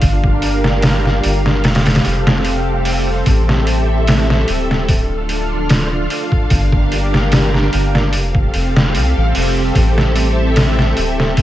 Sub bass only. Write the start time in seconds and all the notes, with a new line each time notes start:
0.03 G1
1.25 G1
1.65 F1
2.06 F1
3.27 A1
4.49 D1
6.51 G1
7.74 G1
8.14 F1
8.54 F1
8.95 C2
9.17 A1
9.36 F1
9.76 A1
10.98 D1